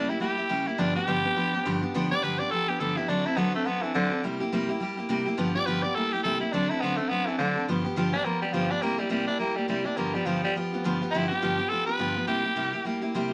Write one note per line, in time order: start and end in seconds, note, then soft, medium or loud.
0.00 0.11 D4 medium
0.09 0.20 A#3 soft
0.09 0.21 E4 medium
0.09 0.20 E4 soft
0.09 0.21 G4 medium
0.20 0.38 G3 medium
0.20 0.38 A#3 medium
0.20 0.37 E4 medium
0.20 0.69 G4 medium
0.20 0.36 G4 medium
0.37 0.48 A#3 soft
0.37 0.49 E4 soft
0.37 0.49 G4 medium
0.49 0.66 C#3 medium
0.49 0.67 G3 medium
0.49 0.67 A#3 medium
0.49 0.66 E4 medium
0.49 0.66 G4 medium
0.67 0.79 A#3 soft
0.67 0.80 E4 medium
0.67 0.79 E4 soft
0.67 0.78 G4 medium
0.78 0.95 G2 medium
0.78 0.96 D3 medium
0.78 0.96 F3 medium
0.78 0.96 B3 medium
0.78 0.95 D4 medium
0.78 0.94 G4 medium
0.95 1.06 F3 soft
0.95 1.06 B3 soft
0.95 1.07 D4 medium
0.95 1.07 G4 medium
0.95 1.79 G4 loud
1.07 1.24 G2 medium
1.07 1.24 D3 medium
1.07 1.24 F3 medium
1.07 1.24 B3 medium
1.07 1.23 D4 medium
1.07 1.23 G4 medium
1.24 1.34 F3 soft
1.24 1.35 B3 soft
1.24 1.36 D4 medium
1.24 1.36 G4 medium
1.35 1.53 F3 medium
1.35 1.53 B3 medium
1.35 1.53 D4 medium
1.35 1.52 G4 medium
1.53 1.65 F3 soft
1.53 1.65 B3 medium
1.53 1.65 D4 medium
1.53 1.65 G4 medium
1.65 1.82 G2 medium
1.65 1.82 D3 medium
1.65 1.83 F3 medium
1.65 1.82 B3 loud
1.65 1.81 D4 loud
1.65 1.81 G4 loud
1.82 1.94 F3 medium
1.82 1.94 B3 medium
1.82 1.94 D4 medium
1.82 1.94 G4 medium
1.94 2.11 G2 medium
1.94 2.11 D3 medium
1.94 2.11 F3 medium
1.94 2.11 B3 medium
1.94 2.11 D4 loud
1.94 2.10 G4 medium
2.11 2.22 F3 soft
2.11 2.23 B3 soft
2.11 2.23 D4 medium
2.11 2.23 G4 medium
2.11 2.25 D5 loud
2.23 2.40 G2 medium
2.23 2.40 D3 medium
2.23 2.40 F3 medium
2.23 2.40 B3 medium
2.23 2.39 D4 medium
2.23 2.39 G4 medium
2.23 2.41 B4 loud
2.39 2.50 F3 soft
2.39 2.51 B3 soft
2.39 2.52 D4 soft
2.39 2.51 G4 soft
2.39 2.52 D5 loud
2.51 2.68 F3 medium
2.51 2.69 B3 medium
2.51 2.68 D4 medium
2.51 2.67 G4 medium
2.51 2.70 A4 loud
2.68 2.79 F3 soft
2.68 2.79 B3 soft
2.68 2.80 D4 soft
2.68 2.80 G4 soft
2.68 2.81 G4 medium
2.80 2.97 G2 medium
2.80 2.97 D3 medium
2.80 2.97 F3 medium
2.80 2.97 B3 medium
2.80 2.96 D4 medium
2.80 2.96 G4 medium
2.80 2.98 A4 loud
2.97 3.08 F3 soft
2.97 3.09 B3 soft
2.97 3.08 D4 soft
2.97 3.10 E4 medium
2.97 3.09 G4 medium
3.09 3.26 D3 medium
3.09 3.26 F#3 medium
3.09 3.26 C4 medium
3.09 3.27 D4 medium
3.09 3.25 D4 medium
3.09 3.24 A4 medium
3.26 3.36 C4 soft
3.26 3.36 D4 soft
3.26 3.39 E4 loud
3.26 3.37 A4 medium
3.36 3.54 D3 medium
3.36 3.54 F#3 medium
3.36 3.54 B3 medium
3.36 3.54 C4 medium
3.36 3.54 D4 medium
3.36 3.53 A4 medium
3.54 3.68 A3 medium
3.54 3.65 C4 soft
3.54 3.66 D4 soft
3.54 3.66 A4 medium
3.65 3.83 F#3 medium
3.65 3.84 B3 loud
3.65 3.83 C4 medium
3.65 3.83 D4 medium
3.65 3.82 A4 medium
3.82 3.94 E3 medium
3.82 3.94 C4 soft
3.82 3.94 D4 soft
3.82 3.94 A4 medium
3.94 4.12 D3 medium
3.94 4.23 D3 loud
3.94 4.12 F#3 medium
3.94 4.12 C4 medium
3.94 4.11 D4 medium
3.94 4.10 A4 medium
4.11 4.24 C4 soft
4.11 4.24 D4 soft
4.11 4.23 A4 medium
4.23 4.40 C3 medium
4.23 4.41 G3 medium
4.23 4.41 A#3 medium
4.23 4.40 E4 medium
4.23 4.39 G4 medium
4.40 4.52 A#3 medium
4.40 4.52 E4 medium
4.40 4.52 G4 medium
4.52 4.69 C3 medium
4.52 4.69 G3 medium
4.52 4.70 A#3 loud
4.52 4.69 E4 loud
4.52 4.67 G4 loud
4.69 4.80 A#3 medium
4.69 4.80 E4 medium
4.69 4.81 G4 medium
4.80 4.98 G3 medium
4.80 4.98 A#3 medium
4.80 4.97 E4 medium
4.80 4.96 G4 medium
4.97 5.08 A#3 soft
4.97 5.09 E4 soft
4.97 5.09 G4 medium
5.09 5.26 C3 medium
5.09 5.26 G3 medium
5.09 5.27 A#3 medium
5.09 5.26 E4 medium
5.09 5.24 G4 loud
5.26 5.38 A#3 soft
5.26 5.38 E4 medium
5.26 5.38 G4 medium
5.37 5.55 G2 medium
5.37 5.55 D3 medium
5.37 5.55 F3 medium
5.37 5.55 B3 loud
5.37 5.54 F4 medium
5.37 5.54 G4 loud
5.55 5.66 F3 soft
5.55 5.66 B3 soft
5.55 5.66 F4 medium
5.55 5.66 G4 medium
5.55 5.68 D5 loud
5.66 5.83 G2 medium
5.66 5.84 D3 medium
5.66 5.84 F3 medium
5.66 5.84 B3 medium
5.66 5.83 F4 medium
5.66 5.83 G4 loud
5.66 5.84 B4 loud
5.83 5.96 F3 soft
5.83 5.96 B3 medium
5.83 5.96 F4 medium
5.83 5.96 G4 medium
5.83 5.96 D5 loud
5.95 6.13 G3 medium
5.95 6.13 A#3 medium
5.95 6.13 E4 medium
5.95 6.12 G4 medium
5.95 6.14 A4 loud
6.13 6.24 A#3 soft
6.13 6.24 E4 soft
6.13 6.23 G4 medium
6.13 6.24 G4 medium
6.23 6.41 C3 medium
6.23 6.41 G3 medium
6.23 6.41 A#3 medium
6.23 6.40 E4 medium
6.23 6.39 G4 medium
6.23 6.40 A4 medium
6.40 6.53 A#3 soft
6.40 6.54 E4 medium
6.40 6.53 E4 soft
6.40 6.52 G4 soft
6.52 6.70 D3 medium
6.52 6.70 F#3 medium
6.52 6.70 C4 medium
6.52 6.71 D4 loud
6.52 6.70 D4 medium
6.52 6.69 A4 medium
6.70 6.82 C4 soft
6.70 6.82 D4 medium
6.70 6.82 E4 medium
6.70 6.82 A4 medium
6.81 6.99 D3 medium
6.81 6.99 F#3 medium
6.81 6.98 B3 loud
6.81 6.99 C4 medium
6.81 6.98 D4 medium
6.81 6.98 A4 medium
6.97 7.11 A3 medium
6.97 7.10 C4 soft
6.97 7.11 D4 medium
6.97 7.10 A4 medium
7.09 7.27 F#3 medium
7.09 7.27 B3 loud
7.09 7.28 C4 medium
7.09 7.27 D4 medium
7.09 7.26 A4 medium
7.26 7.37 E3 medium
7.26 7.38 C4 soft
7.26 7.39 D4 soft
7.26 7.39 A4 medium
7.38 7.66 D3 loud
7.38 7.56 D3 medium
7.38 7.56 F#3 medium
7.38 7.56 C4 medium
7.38 7.56 D4 medium
7.38 7.55 A4 medium
7.56 7.69 C4 soft
7.56 7.68 D4 soft
7.56 7.68 A4 medium
7.68 7.85 G2 medium
7.68 7.85 D3 medium
7.68 7.85 F3 medium
7.68 7.85 B3 medium
7.68 7.84 F4 medium
7.68 7.83 G4 medium
7.84 7.95 F3 medium
7.84 7.96 B3 medium
7.84 7.96 F4 medium
7.84 7.96 G4 medium
7.96 8.13 G2 medium
7.96 8.13 D3 medium
7.96 8.13 F3 medium
7.96 8.13 B3 medium
7.96 8.13 F4 loud
7.96 8.12 G4 loud
8.13 8.23 F3 soft
8.13 8.24 B3 soft
8.13 8.26 D4 loud
8.13 8.25 F4 soft
8.13 8.25 G4 medium
8.25 8.42 F3 medium
8.25 8.41 A#3 medium
8.25 8.42 B3 medium
8.25 8.42 F4 medium
8.25 8.41 G4 medium
8.42 8.52 F3 soft
8.42 8.55 G3 medium
8.42 8.53 B3 soft
8.42 8.53 F4 soft
8.42 8.53 G4 medium
8.53 8.70 G2 medium
8.53 8.70 D3 medium
8.53 8.72 F3 medium
8.53 8.70 F3 medium
8.53 8.70 B3 medium
8.53 8.69 F4 medium
8.53 8.69 G4 medium
8.70 8.82 F3 soft
8.70 8.82 B3 soft
8.70 8.84 D4 medium
8.70 8.82 F4 medium
8.70 8.82 G4 soft
8.82 8.99 C3 medium
8.82 8.99 G3 medium
8.82 9.01 A#3 loud
8.82 8.99 A#3 medium
8.82 8.98 E4 medium
8.82 8.97 G4 medium
8.98 9.10 G3 medium
8.98 9.09 A#3 soft
8.98 9.09 E4 soft
8.98 9.09 G4 medium
9.09 9.27 C3 medium
9.09 9.27 G3 medium
9.09 9.27 A#3 medium
9.09 9.27 E4 medium
9.09 9.26 G4 medium
9.27 9.39 A#3 soft
9.27 9.39 D4 medium
9.27 9.39 E4 soft
9.27 9.39 G4 medium
9.39 9.56 G3 medium
9.39 9.58 A#3 medium
9.39 9.57 A#3 medium
9.39 9.56 E4 medium
9.39 9.55 G4 medium
9.56 9.68 G3 medium
9.56 9.68 A#3 soft
9.56 9.68 E4 soft
9.56 9.68 G4 medium
9.68 9.85 C3 medium
9.68 9.85 G3 medium
9.68 9.87 G3 medium
9.68 9.85 A#3 medium
9.68 9.85 E4 medium
9.68 9.83 G4 medium
9.85 9.97 A#3 soft
9.85 9.98 D4 medium
9.85 9.97 E4 soft
9.85 9.97 G4 medium
9.97 10.14 G2 medium
9.97 10.14 D3 medium
9.97 10.14 F3 medium
9.97 10.16 A#3 medium
9.97 10.14 B3 medium
9.97 10.14 F4 medium
9.97 10.13 G4 medium
10.14 10.25 F3 soft
10.14 10.28 G3 medium
10.14 10.25 B3 soft
10.14 10.26 F4 medium
10.14 10.25 G4 medium
10.25 10.43 G2 medium
10.25 10.43 D3 medium
10.25 10.43 F3 medium
10.25 10.43 B3 medium
10.25 10.43 F4 medium
10.25 10.42 G4 medium
10.44 10.54 F3 soft
10.44 10.54 G3 loud
10.44 10.55 B3 soft
10.44 10.55 F4 medium
10.44 10.55 G4 medium
10.55 10.72 F3 medium
10.55 10.72 B3 medium
10.55 10.72 F4 medium
10.55 10.71 G4 medium
10.73 10.84 F3 soft
10.73 10.84 B3 soft
10.73 10.84 F4 medium
10.73 10.84 G4 medium
10.84 11.01 G2 loud
10.84 11.01 D3 medium
10.84 11.01 F3 medium
10.84 11.01 B3 medium
10.84 11.01 F4 medium
10.84 11.00 G4 medium
11.01 11.13 F3 soft
11.01 11.13 B3 soft
11.01 11.13 F4 medium
11.01 11.13 G4 medium
11.11 11.30 G2 medium
11.11 11.30 D3 medium
11.11 11.30 F3 medium
11.11 11.30 B3 medium
11.11 11.27 E4 loud
11.11 11.30 F4 medium
11.11 11.29 G4 medium
11.28 11.41 B3 medium
11.28 11.41 F4 medium
11.28 11.70 G4 loud
11.28 11.42 G4 medium
11.33 11.41 F3 soft
11.42 11.58 G2 medium
11.42 11.59 D3 medium
11.42 11.59 F3 medium
11.42 11.59 B3 medium
11.42 11.58 F4 medium
11.42 11.57 G4 medium
11.58 11.69 F3 soft
11.58 11.70 B3 medium
11.58 11.70 F4 medium
11.58 11.70 G4 medium
11.69 11.87 F3 medium
11.69 11.88 B3 medium
11.69 11.87 F4 medium
11.69 11.86 G4 medium
11.69 11.86 A4 loud
11.86 11.98 F3 soft
11.86 11.98 B3 soft
11.86 11.98 F4 soft
11.86 11.99 G4 soft
11.86 12.26 B4 medium
11.98 12.15 G2 medium
11.98 12.16 D3 medium
11.98 12.16 F3 medium
11.98 12.16 B3 medium
11.98 12.16 F4 medium
11.98 12.15 G4 medium
12.16 12.27 F3 soft
12.16 12.28 B3 soft
12.16 12.28 F4 soft
12.16 12.27 G4 medium
12.27 12.44 C3 medium
12.27 12.44 G3 medium
12.27 12.45 A#3 medium
12.27 12.44 E4 medium
12.27 12.83 G4 loud
12.27 12.43 G4 medium
12.44 12.55 A#3 soft
12.44 12.56 E4 medium
12.44 12.56 G4 medium
12.56 12.73 C3 medium
12.56 12.73 G3 medium
12.56 12.73 A#3 medium
12.56 12.73 E4 medium
12.56 12.72 G4 medium
12.73 12.84 A#3 medium
12.73 12.85 E4 medium
12.73 12.85 G4 medium
12.85 13.02 G3 medium
12.85 13.02 A#3 medium
12.85 13.02 E4 medium
12.85 13.00 G4 medium
13.01 13.14 A#3 soft
13.01 13.14 E4 medium
13.01 13.13 G4 medium
13.14 13.31 C3 medium
13.14 13.31 G3 medium
13.14 13.32 A#3 medium
13.14 13.31 E4 medium
13.14 13.30 G4 loud